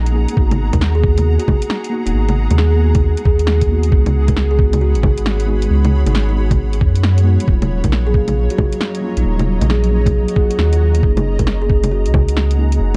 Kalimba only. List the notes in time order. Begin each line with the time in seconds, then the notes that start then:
0.73 A#4
0.95 G#4
1.39 F#4
2.06 D#4
2.58 G#4
3.25 G#4
4.28 A#4
4.51 G#4
4.81 F#4
6.07 D#4
6.29 D#4
7.85 A#4
8.07 G#4
8.51 F#4
9.18 D#4
9.70 G#4
10.36 G#4
11.39 A#4
11.62 G#4
11.92 F#4